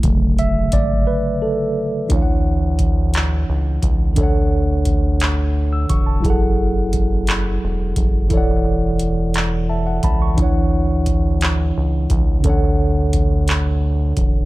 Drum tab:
HH |xxx---|x-xx-x|x-xx-x|x-xx-x|
CP |------|---x--|---x--|---x--|
BD |o-o---|o-o--o|o-o--o|o-o--o|

HH |x-xx-x|x-xx-x|x-xx-x|
CP |---x--|---x--|---x--|
BD |o----o|o-o--o|o-o--o|